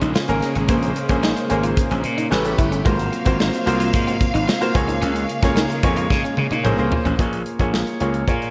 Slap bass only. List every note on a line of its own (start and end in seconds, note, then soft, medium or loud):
0.02 0.13 A#1 medium
0.29 0.40 G#1 medium
0.56 0.67 G#1 medium
0.69 0.91 A#1 loud
1.09 1.32 A#1 medium
1.51 1.73 G#1 medium
1.91 2.02 A#1 medium
2.04 2.27 A#2 medium
2.32 2.54 A1 loud
2.59 2.81 G1 medium
2.86 3.08 G#1 medium
3.26 3.48 G#1 medium
3.67 3.89 C2 medium
3.94 4.16 G#2 medium
4.35 4.46 G#1 medium
4.75 4.97 C#2 medium
5.02 5.24 C#2 loud
5.43 5.65 C#2 medium
5.83 6.06 F2 medium
6.11 6.22 C#3 medium
6.38 6.49 C#3 loud
6.52 6.63 A#2 medium
6.65 6.76 A#1 loud
6.78 6.90 C2 loud
7.06 7.17 A1 medium
7.19 7.41 A#1 medium
7.60 7.82 A#1 medium
8.01 8.23 C#2 medium
8.28 8.50 A#2 medium